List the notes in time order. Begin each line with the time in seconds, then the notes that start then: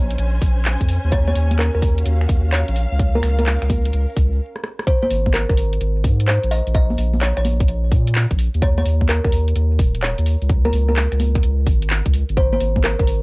Already playing: A#1 C#4 C5 G#5
0.11 closed hi-hat, shaker
0.18 A#1, closed hi-hat, shaker
0.41 A#1, kick, open hi-hat, shaker
0.58 shaker
0.64 clap, shaker
0.80 F2, kick, closed hi-hat, shaker
0.88 open hi-hat, shaker
1.04 D#2, shaker
1.12 C#5, kick, closed hi-hat, shaker
1.28 C#5, high conga, shaker
1.35 D#2, open hi-hat, shaker
1.51 closed hi-hat, high conga, shaker
1.59 A#4, clap, shaker
1.75 D#2 F#4 A#4
1.82 kick, open hi-hat, shaker
1.98 F5, closed hi-hat, shaker
2.06 D#2, closed hi-hat, shaker
2.21 finger snap
2.29 D#2, kick, open hi-hat, shaker
2.44 shaker
2.52 C#5, clap, shaker
2.68 A#1, closed hi-hat, shaker
2.76 open hi-hat, shaker
2.92 C#2, shaker
2.99 kick, closed hi-hat, shaker
3.15 A#4, high conga, shaker
3.23 C#2, finger snap, open hi-hat, shaker
3.29 A#4
3.38 A#4, closed hi-hat, high conga, shaker
3.46 clap, shaker
3.62 C#2, finger snap, closed hi-hat, shaker
3.70 kick, open hi-hat, high conga, shaker
3.85 closed hi-hat, shaker
3.93 C#2, closed hi-hat, shaker
4.09 shaker
4.16 C#2, kick, open hi-hat, shaker
4.32 shaker
4.56 cross-stick
4.64 cross-stick
4.79 cross-stick
4.87 C5, kick, closed hi-hat, shaker
5.02 C5, high conga, shaker
5.10 G#1, open hi-hat, shaker
5.26 kick, high conga, shaker
5.34 A#4, clap, closed hi-hat, shaker
5.49 G#1 A#4, finger snap, kick, closed hi-hat
5.57 open hi-hat, shaker
5.73 closed hi-hat, shaker
5.81 G#1, closed hi-hat, shaker
6.04 G#2, kick, open hi-hat, shaker
6.20 closed hi-hat, shaker
6.28 C5, clap, shaker
6.43 A#1, closed hi-hat, shaker
6.51 D#5, open hi-hat, shaker
6.67 A#1, closed hi-hat, shaker
6.74 D#5, kick, closed hi-hat, shaker
6.90 high conga, shaker
6.97 A#1, open hi-hat, shaker
7.14 high conga, shaker
7.21 C#5, clap, closed hi-hat, shaker
7.37 A#1 C#5, finger snap, closed hi-hat
7.45 open hi-hat, high conga, shaker
7.60 kick, closed hi-hat, shaker
7.68 A#1, closed hi-hat, shaker
7.91 A#2, kick, open hi-hat, shaker
8.07 closed hi-hat, shaker
8.15 clap, shaker
8.30 A#1, kick, closed hi-hat, shaker
8.39 open hi-hat, shaker
8.54 D#2, closed hi-hat, shaker
8.62 C#5, kick, closed hi-hat, shaker
8.78 C#5, high conga, shaker
8.85 D#2, open hi-hat, shaker
9.01 kick, high conga, shaker
9.09 A#4, clap, closed hi-hat, shaker
9.24 D#2 A#4, finger snap, kick, closed hi-hat
9.32 open hi-hat, shaker
9.47 closed hi-hat, shaker
9.55 D#2, closed hi-hat, shaker
9.79 D#1, kick, open hi-hat, shaker
9.95 closed hi-hat, shaker
10.02 C#5, clap, shaker
10.18 D#2, closed hi-hat, shaker
10.26 open hi-hat, shaker
10.42 C#2, closed hi-hat, shaker
10.49 kick, closed hi-hat, shaker
10.65 A#4, high conga, shaker
10.73 C#2, open hi-hat, shaker
10.88 A#4, high conga, shaker
10.96 clap, closed hi-hat, shaker
11.12 C#2, finger snap, closed hi-hat, shaker
11.20 open hi-hat, high conga, shaker
11.35 finger snap, kick, closed hi-hat, shaker
11.43 C#2, closed hi-hat, shaker
11.66 G#1, kick, open hi-hat, shaker
11.82 closed hi-hat, shaker
11.90 clap, shaker
12.06 C#2, kick, closed hi-hat, shaker
12.13 open hi-hat, shaker
12.29 G#1, closed hi-hat, shaker
12.37 C5, kick, closed hi-hat, shaker
12.53 C5, high conga, shaker
12.60 G#1, open hi-hat, shaker
12.76 kick, high conga, shaker
12.84 A#4, clap, closed hi-hat, shaker
12.99 G#1 A#4, finger snap, kick, closed hi-hat
13.07 open hi-hat, shaker